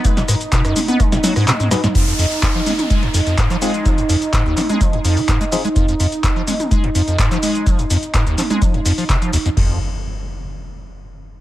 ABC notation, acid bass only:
X:1
M:4/4
L:1/16
Q:1/4=126
K:Fm
V:1 name="Acid bass" clef=bass
A, A,, A,, z _C, _G,, A, _C A, A,, _G, A,, C, A,, A,, A,, | F,, F,, F,, z F,, F, A, z A, F,, F,, F,, A,, F, A,2 | F, F,, F,, z A,, E,, F, A, F, F,, F,, E, A,, A, F, A, | F,, F,, F,, z F,, F, A, z A, F,, F,, F,, A,, F, A,2 |
F, F,, F,, z A,, E,, F, A, F, F,, F,, F, C, F, E,, F,, | F,,2 z12 z2 |]